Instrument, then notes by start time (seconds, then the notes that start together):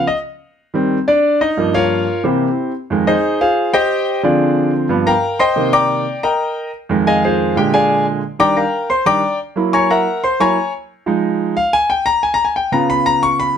grand piano
0.07 D#5
0.74 D#3 G3 C4
1.08 D4 D5
1.41 D#4 D#5
1.57 G2 F3 A#3
1.74 F4 A#4 C#5 F5
2.24 C3 E3 A#3 C4 E4 G4 C5
2.90 F2 D#3 G#3
3.07 D#4 G#4 C5 D#5
3.41 F4 G#4 C5 F5
3.74 G4 C5 D#5 G5
4.23 D3 F3 C4 D4 F4 G#4 D5
4.89 G2 F3 B3
5.07 A#4 F5 G5 A#5
5.39 C5 D#5 G5 C6
5.56 C3 D#3 A#3
5.73 D5 G5 A#5 D6
6.23 A#4 D#5 G5 A#5
6.89 F2 D#3 G#3
7.07 G#4 D#5 F5 G#5
7.24 F4 G#4 C5 F5
7.56 A#2 D3 G#3 G4 G5
7.74 G#4 D5 F5 G#5
8.39 D#3 G3 D4 D5 G5 A#5 D6
8.57 A#4 F5 G5 A#5
8.90 C5 C6
9.06 D#3 G3 D4 D5 G5 A#5 D6
9.56 F#3 A#3 E4
9.73 C#5 G#5 A#5 C#6
9.90 A#4 E5 F#5 A#5
10.24 C5 C6
10.40 F#3 A#3 E4 C#5 G#5 A#5 C#6
11.06 F3 G#3 D#4
11.57 F5
11.73 G#5
11.90 G5
12.06 A#5
12.23 G#5
12.34 A#5
12.45 G#5
12.56 G5
12.72 C#3 B3 F4 A#5
12.90 B5
13.06 A#5
13.23 C#6
13.40 B5